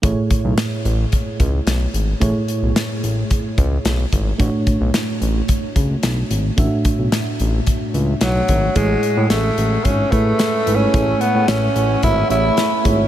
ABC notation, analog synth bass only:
X:1
M:4/4
L:1/16
Q:1/4=110
K:A
V:1 name="Analog synth bass" clef=bass
A,,, z2 B,,, z2 A,,,2 z2 C,,2 B,,,2 G,,,2 | A,,, z2 B,,, z2 A,,,2 z2 C,,2 B,,,2 G,,,2 | A,,, z2 B,,, z2 A,,,2 z2 C,,2 B,,,2 G,,,2 | A,,, z2 B,,, z2 A,,,2 z2 C,,2 B,,,2 G,,,2 |
A,,,2 z A,, A,,,2 A,,,2 G,,,2 A,,,2 z2 G,,,2 | A,,,2 z A,, A,,,2 A,,,2 G,,,2 A,,,2 z2 G,,,2 |]